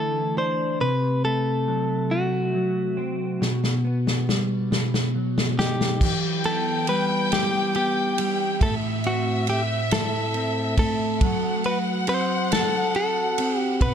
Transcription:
Already playing: clean electric guitar D3 E3 A3 E4 A4
0.37 clean electric guitar D4 C5
0.81 clean electric guitar C3 B4
1.25 clean electric guitar A3 A4
1.68 clean electric guitar F#3
2.11 clean electric guitar A3 F#4
2.55 clean electric guitar F#3
2.97 clean electric guitar C4
3.41 clean electric guitar B2, snare
3.64 snare
3.85 clean electric guitar B3
4.07 snare
4.29 clean electric guitar G3, snare
4.71 clean electric guitar B2, snare
4.94 snare
5.15 clean electric guitar F#3
5.38 snare
5.59 clean electric guitar D#4 G4, snare
5.81 snare
6.00 clean electric guitar E3, violin section G5, kick, crash
6.44 clean electric guitar B3 A4, ride
6.87 clean electric guitar G3 B4, ride
7.32 clean electric guitar G4, snare, ride
7.75 clean electric guitar B3 G4, ride
8.18 clean electric guitar G3, ride
8.61 clean electric guitar A2 A4, violin section E5, kick, ride
9.04 clean electric guitar C4 F#4, ride
9.47 clean electric guitar A3 G4, ride
9.91 clean electric guitar E4 A4, snare, ride
10.34 clean electric guitar C4, ride
10.77 clean electric guitar A3 A4, kick, ride
11.21 clean electric guitar F#3, violin section F#5, kick, ride
11.64 clean electric guitar F#4 B4, ride
12.07 clean electric guitar C4 C5, ride
12.52 clean electric guitar A4, snare, ride
12.95 clean electric guitar F#4 A4, ride
13.38 clean electric guitar C4, ride
13.59 clean electric guitar G4
13.80 clean electric guitar B2 B4, violin section F#5, kick, ride

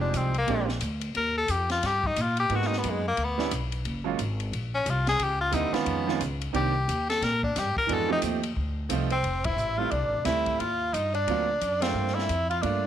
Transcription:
Already playing: upright bass F1, grand piano F3 G#3 C4 D#4 G4
0.01 tenor saxophone D4
0.14 upright bass C2, tenor saxophone C4, kick, hi-hat pedal, ride
0.34 tenor saxophone A#3, ride
0.47 upright bass A#1, grand piano G#3 A#3 C4 D4 G4, kick, ride
0.69 snare
0.81 upright bass D2, kick, hi-hat pedal, ride
1.01 ride
1.15 upright bass D#2, tenor saxophone A#4, kick, ride
1.38 tenor saxophone A4
1.48 upright bass F2, tenor saxophone G4, kick, hi-hat pedal, ride
1.70 tenor saxophone F4, snare, ride
1.83 upright bass G2, tenor saxophone G4, kick, snare, ride
2.04 tenor saxophone D#4, kick
2.16 upright bass A#2, kick, hi-hat pedal, ride
2.22 tenor saxophone F4
2.37 tenor saxophone G4, ride
2.49 upright bass G#2, grand piano G#3 A#3 B3 D#4 F#4, kick, ride
2.55 tenor saxophone F#4
2.62 snare
2.67 tenor saxophone D#4
2.73 snare
2.78 tenor saxophone B3
2.84 upright bass F#2, kick, hi-hat pedal, ride
2.90 tenor saxophone G#3
3.08 tenor saxophone A#3
3.17 upright bass D2, kick, ride
3.24 tenor saxophone B3
3.38 grand piano G3 B3 C#4 D4 E4, snare
3.51 upright bass B1, kick, hi-hat pedal, ride
3.72 ride
3.85 upright bass F#1, kick, ride
4.04 grand piano F#3 G#3 A#3 C#4 F4
4.19 upright bass G#1, kick, hi-hat pedal, ride
4.40 ride
4.52 upright bass A#1, kick, ride
4.75 tenor saxophone C#4
4.86 upright bass C2, kick, hi-hat pedal, ride
4.90 tenor saxophone F4
5.07 tenor saxophone G#4, snare, ride
5.20 upright bass C#2, tenor saxophone G4, kick, ride
5.41 tenor saxophone F4
5.51 upright bass D#2, grand piano D3 G3 A#3 C4 E4, tenor saxophone D#4, kick, hi-hat pedal, ride
5.72 grand piano D#3 G#3 B3 C#4 F4, tenor saxophone B3, muted upright bass stroke, snare, ride
5.86 upright bass F2, kick, ride
6.06 grand piano D#3 G#3 B3 C#4 F4, snare
6.20 upright bass C#2, kick, hi-hat pedal, ride
6.41 ride
6.53 upright bass C2, grand piano D#3 A#3 C4 D4 G4, tenor saxophone G4, kick, ride
6.88 upright bass D#2, kick, hi-hat pedal, ride
7.09 tenor saxophone A4, snare, ride
7.22 upright bass A#2, tenor saxophone A#4, kick, snare, ride
7.43 tenor saxophone D4, kick
7.56 upright bass G2, tenor saxophone G4, kick, snare, hi-hat pedal, ride
7.77 tenor saxophone A#4, muted upright bass stroke, kick
7.87 upright bass F2, grand piano E3 G#3 B3 D4 F#4, kick, ride
7.94 tenor saxophone A4
8.08 grand piano F3 A3 C4 D#4 G4
8.12 tenor saxophone D#4
8.22 upright bass D#2, kick, hi-hat pedal, ride
8.43 ride
8.56 upright bass D2, kick
8.89 upright bass C2, grand piano F3 A3 C4 D#4 F4, kick, hi-hat pedal, ride
9.10 tenor saxophone C4, alto saxophone C5, ride
9.23 upright bass F1, kick, ride
9.44 tenor saxophone E4, alto saxophone E5, kick, ride
9.57 upright bass A1, hi-hat pedal
9.78 grand piano G3 A3 C4 E4, tenor saxophone F4, alto saxophone F5
9.91 upright bass C2, tenor saxophone D4, alto saxophone D5, kick, ride
10.02 upright bass A1
10.14 upright bass F1
10.24 upright bass D2, grand piano G3 A3 C4 E4, tenor saxophone E4, alto saxophone E5, kick, snare, hi-hat pedal, ride
10.46 kick, ride
10.59 upright bass D#2, tenor saxophone F4, alto saxophone F5, kick, ride
10.93 upright bass G2, tenor saxophone D#4, alto saxophone D#5, kick, hi-hat pedal, ride
11.14 tenor saxophone D4, alto saxophone D5, ride
11.27 upright bass D2, grand piano F#3 A#3 C4 F4, kick, ride
11.61 upright bass F#2, kick, hi-hat pedal, ride
11.80 grand piano A3 A#3 D4 F4, tenor saxophone C4, alto saxophone C5, snare, ride
11.94 upright bass G2
12.07 snare
12.14 tenor saxophone E4, alto saxophone E5
12.19 snare
12.29 upright bass F2, kick, hi-hat pedal, ride
12.50 tenor saxophone F4, alto saxophone F5, ride
12.62 upright bass G2, grand piano A3 A#3 D4 F4, tenor saxophone D4, alto saxophone D5, kick, ride

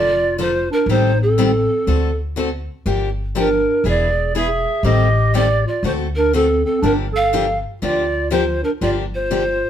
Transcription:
Already playing: upright bass F1, steel-string acoustic guitar D3 F3 A#3 D4 A4, clarinet F4, pan flute D5
0.38 steel-string acoustic guitar D3 F3 A#3 D4 A4, clarinet F4, pan flute C5
0.71 clarinet D4, pan flute A#4
0.86 upright bass A1, steel-string acoustic guitar D#3 G3 C4 G4 A4, clarinet D#4
0.91 pan flute C5
1.20 clarinet C4, pan flute A4
1.38 steel-string acoustic guitar D#3 G3 C4 G4 A4
1.87 upright bass D2, steel-string acoustic guitar D3 A3 C4 F#4 A4
2.36 steel-string acoustic guitar D3 A3 C4 F#4 A4
2.86 upright bass G1, steel-string acoustic guitar D3 F3 A#3 D4 G4
3.35 steel-string acoustic guitar D3 F3 A#3 D4 G4, clarinet D4
3.39 pan flute A#4
3.84 upright bass E1, steel-string acoustic guitar E3 B3 D4 G#4, clarinet G#4
3.88 pan flute D5
4.35 steel-string acoustic guitar E3 B3 D4 G#4, clarinet G#4, pan flute E5
4.83 upright bass A1, steel-string acoustic guitar D#3 G3 C4 G4 A4, clarinet G4, pan flute D#5
5.34 steel-string acoustic guitar D#3 G3 C4 G4 A4, clarinet G4, pan flute D5
5.66 clarinet F4, pan flute D5
5.83 upright bass D2, steel-string acoustic guitar D3 A3 C4 F#4 A4, clarinet F#4, pan flute C5
6.16 clarinet D4, pan flute A#4
6.33 steel-string acoustic guitar D3 A3 C4 F#4 A4, clarinet C4, pan flute A4
6.64 clarinet C4, pan flute A4
6.81 upright bass G1, steel-string acoustic guitar D3 F3 A#3 D4 G4, clarinet D4, pan flute A#4
7.13 clarinet A4, pan flute F5
7.33 steel-string acoustic guitar D3 F3 A#3 D4 G4
7.82 upright bass D2, steel-string acoustic guitar D3 F3 A#3 D4 G4, clarinet F4, pan flute D5
8.31 steel-string acoustic guitar D3 F3 A#3 D4 G4, clarinet F4, pan flute C5
8.63 clarinet D4, pan flute A#4
8.81 upright bass G1, steel-string acoustic guitar D3 F3 A#3 D4 G4, clarinet F4, pan flute D5
9.13 clarinet F4, pan flute C5
9.31 steel-string acoustic guitar D3 F3 A#3 D4 G4

